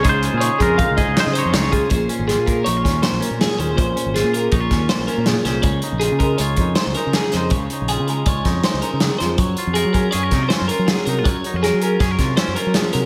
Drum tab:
HH |xxxxxxxxxx|xxxxxxxxxx|xxxxxxxxxx|xxxxxxxxxx|
SD |------o-o-|--o--oo-o-|--o--oo-oo|------o-oo|
BD |o--ooo---o|o--o-o----|o---oo----|o--o-o----|

HH |xxxxxxxxxx|xxxxxxxxxx|xxxxxxxxxx|
SD |-----oo-oo|-----oo-o-|--o-ooo-o-|
BD |o---oo----|o--o-o----|o---oo----|